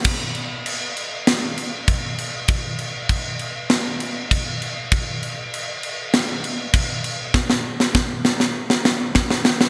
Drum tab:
CC |x-x-x-x-x-x-x-x-|x-x-x-x-x-x-x-x-|x-x-x-x-x-x-x-x-|----------------|
SD |--------o-------|--------o-------|--------o-------|oo-oo-oo-oo-oooo|
BD |o-----------o---|o---o-------o---|o-----------o---|o---o-------o---|